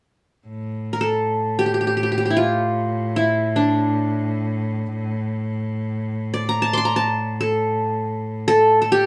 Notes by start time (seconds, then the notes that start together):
0.48 A2
0.93 A#4
1.01 A4
1.59 G4
1.66 G4
1.74 G4
1.81 G4
1.87 G4
1.97 G4
2.03 G4
2.12 G4
2.18 G4
2.26 G4
2.30 E4
2.37 F4
3.16 E4
3.56 D4
6.34 D5
6.49 A#5
6.62 A5
6.73 C6 D6
6.77 C6
6.85 A#5
6.96 A5
7.41 A4
8.48 A4
8.82 A4
8.92 G4